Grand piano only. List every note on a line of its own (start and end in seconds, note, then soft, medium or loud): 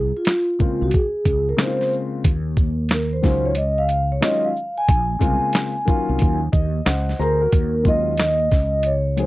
0.59 0.86 C#3 medium
0.59 0.86 G#3 medium
0.59 0.87 A#3 medium
0.59 0.87 C4 medium
0.59 0.87 F4 medium
1.57 2.24 C#3 medium
1.57 2.24 G#3 medium
1.57 2.25 A#3 medium
1.57 2.25 C4 medium
1.57 1.68 D#4 medium
1.66 2.29 F4 medium
3.22 3.49 D#3 medium
3.22 3.50 F#3 medium
3.22 3.50 G#3 medium
3.22 3.50 C#4 medium
3.22 3.51 F4 medium
4.21 4.48 D#3 medium
4.21 4.48 F#3 medium
4.21 4.49 G#3 medium
4.21 4.49 C#4 medium
4.21 4.50 F4 medium
5.19 5.71 C#3 medium
5.19 5.71 G#3 medium
5.19 5.72 A#3 medium
5.19 5.72 C4 medium
5.19 5.72 F4 medium
5.85 6.37 D#3 medium
5.85 6.37 F#3 medium
5.85 6.38 A#3 medium
5.85 6.38 C#4 medium
5.85 6.38 F4 medium
6.52 6.84 D#5 medium
6.85 7.18 C5 medium
6.85 7.17 D#5 medium
6.85 7.17 F#5 medium
7.20 7.41 G#4 medium
7.20 7.40 C5 medium
7.20 7.50 A#5 medium
7.41 7.73 F#4 medium
7.41 7.72 A#4 medium
7.83 8.10 D#3 medium
7.83 8.11 F#3 medium
7.83 8.11 G#3 medium
7.83 8.12 C#4 medium
7.83 8.12 F4 medium
9.16 9.26 D#3 medium
9.16 9.26 F#3 medium
9.16 9.26 G#3 medium
9.16 9.26 C#4 medium
9.16 9.26 G#4 medium